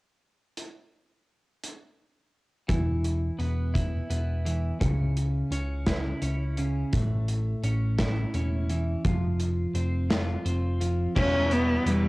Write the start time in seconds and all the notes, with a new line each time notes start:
0.57 closed hi-hat
1.63 closed hi-hat
2.68 E1 E3, kick, closed hi-hat
3.04 closed hi-hat
3.39 E1 B3, closed hi-hat
3.74 E4, kick, closed hi-hat
4.10 E1 B3, closed hi-hat
4.45 E3, closed hi-hat
4.80 C#2 C#3, kick, closed hi-hat
5.17 closed hi-hat
5.51 C#2 C#4, closed hi-hat
5.87 E4, kick, snare, closed hi-hat
6.22 C#2 C#4, closed hi-hat
6.57 C#3, closed hi-hat
6.93 A1 A2, kick, closed hi-hat
7.28 closed hi-hat
7.63 A1 C#4, closed hi-hat
7.99 E4, kick, snare, closed hi-hat
8.34 E1 C#4, closed hi-hat
8.69 E3, closed hi-hat
9.05 F1 F3, kick, closed hi-hat
9.40 closed hi-hat
9.74 F1 C4, closed hi-hat
10.10 F4, snare, closed hi-hat
10.45 F1 C4, closed hi-hat
10.80 F3, closed hi-hat
11.15 E1 E3 G3 B3 C#4 E4, kick, crash
11.51 E3 G3 B3 E4, closed hi-hat
11.86 E1 E3 G3 B3 E4, closed hi-hat